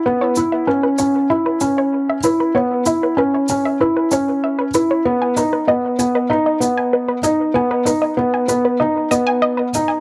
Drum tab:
SH |-x-x-x-x|-x-x-x-x|-x-x-x-x|-x-x-x-x|